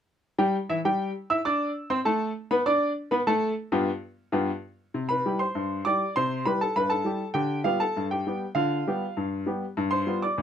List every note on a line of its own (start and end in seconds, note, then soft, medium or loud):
0.38 0.55 G3 medium
0.38 0.55 G4 medium
0.38 0.55 G5 medium
0.69 0.78 E3 medium
0.69 0.78 E4 medium
0.69 0.78 E5 medium
0.85 1.10 G3 medium
0.85 1.10 G4 medium
0.85 1.10 G5 medium
1.30 1.38 E4 medium
1.30 1.38 E5 medium
1.30 1.38 E6 medium
1.45 1.70 D4 medium
1.45 1.70 D5 medium
1.45 1.70 D6 medium
1.90 1.98 C4 medium
1.90 1.98 C5 medium
1.90 1.98 C6 medium
2.05 2.30 A3 medium
2.05 2.30 A4 medium
2.05 2.30 A5 medium
2.51 2.59 B3 medium
2.51 2.59 B4 medium
2.51 2.59 B5 medium
2.66 2.91 D4 medium
2.66 2.90 D5 medium
2.66 2.90 D6 medium
3.11 3.20 B3 medium
3.11 3.19 B4 medium
3.11 3.20 B5 medium
3.27 3.51 A3 medium
3.27 3.51 A4 medium
3.27 3.51 A5 medium
3.72 3.88 G2 medium
3.72 3.88 B3 medium
3.72 3.88 F4 medium
3.72 3.88 G4 medium
4.32 4.49 G2 medium
4.32 4.49 B3 medium
4.32 4.49 F4 medium
4.32 4.49 G4 medium
4.94 5.19 C3 medium
5.09 5.37 B4 medium
5.09 5.37 B5 medium
5.26 5.42 G3 soft
5.26 5.42 E4 soft
5.26 5.42 G4 soft
5.39 5.82 C5 soft
5.39 5.82 C6 medium
5.55 5.80 G2 medium
5.85 6.02 G3 soft
5.85 6.02 E4 soft
5.85 6.02 G4 soft
5.85 6.13 D5 medium
5.85 6.13 D6 medium
6.16 6.41 C3 medium
6.16 6.44 C5 medium
6.16 6.44 C6 medium
6.45 6.62 G3 soft
6.45 6.63 E4 soft
6.45 6.63 G4 soft
6.45 6.60 B4 medium
6.45 6.60 B5 medium
6.61 6.75 A4 medium
6.61 6.75 A5 medium
6.76 7.01 G2 medium
6.76 6.90 B4 medium
6.76 6.90 B5 medium
6.90 7.33 A4 medium
6.90 7.26 A5 medium
7.05 7.21 G3 soft
7.05 7.22 E4 soft
7.05 7.22 G4 soft
7.34 7.60 D3 medium
7.34 7.63 G4 medium
7.34 7.58 G5 medium
7.64 7.81 G3 soft
7.64 7.82 B3 soft
7.64 7.79 F4 medium
7.64 7.82 G4 soft
7.64 7.80 F5 medium
7.80 8.09 A4 medium
7.80 8.04 A5 medium
7.97 8.22 G2 medium
8.11 8.26 G4 medium
8.11 8.47 G5 medium
8.27 8.43 G3 soft
8.27 8.44 B3 soft
8.27 8.43 G4 soft
8.55 8.81 D3 medium
8.55 9.43 F4 medium
8.55 9.28 F5 medium
8.87 9.04 G3 soft
8.87 9.04 B3 soft
8.87 9.04 G4 medium
9.17 9.42 G2 medium
9.46 9.63 G3 soft
9.46 9.63 B3 soft
9.46 9.64 G4 soft
9.77 10.03 G2 medium
9.91 10.20 C5 medium
9.91 10.16 C6 medium
10.07 10.24 G3 soft
10.07 10.24 B3 soft
10.07 10.24 F4 medium
10.22 10.42 D5 medium
10.22 10.42 D6 medium
10.38 10.42 D2 medium